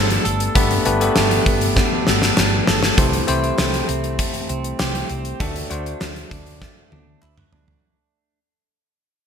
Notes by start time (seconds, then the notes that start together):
Already playing: G1 A3 B3 D4 G4 A4 B4
0.10 D4, closed hi-hat
0.25 G1 A4, closed hi-hat
0.40 closed hi-hat
0.55 G1 A3 B3 D4 G4 B4, kick, closed hi-hat
0.71 closed hi-hat
0.85 G1 A3 B3 D4 G4 B4, closed hi-hat
1.00 A3 B3 D4 G4 A4, closed hi-hat
1.16 G1 D4, snare, clap, tambourine
1.31 closed hi-hat
1.46 G1 B3, kick, closed hi-hat
1.61 closed hi-hat
1.76 D4, kick, snare
2.07 G1 A4, snare
2.22 snare
2.37 G1 D4, snare, clap
2.67 G1 A4, snare
2.83 snare
2.97 C2 E3 A3 C4 E4 G4 C5, kick, closed hi-hat
3.13 closed hi-hat
3.27 C2 A3 C4 E4 G4 C5, closed hi-hat
3.44 closed hi-hat
3.58 C2 A3, snare, clap, tambourine
3.74 closed hi-hat
3.88 C2 C4, closed hi-hat
4.04 closed hi-hat
4.19 A3, kick, closed hi-hat
4.34 closed hi-hat
4.49 C2 C4, closed hi-hat
4.64 closed hi-hat
4.79 C2 G4, snare, clap, tambourine
4.95 closed hi-hat
5.09 C2 C4, closed hi-hat
5.25 closed hi-hat
5.40 D2 A3 D4 F#4 A4, kick, closed hi-hat
5.56 closed hi-hat
5.70 D2 D4 F#4 C5, closed hi-hat
5.86 closed hi-hat
6.00 D2 A3, snare, clap, tambourine
6.16 closed hi-hat
6.31 D2 D4, kick, closed hi-hat
6.46 closed hi-hat
6.61 A3, kick, snare
6.92 D2 D4, high tom
7.22 D2 E4, clap
7.37 F#4, mid tom
7.52 D2 D4, floor tom
7.68 floor tom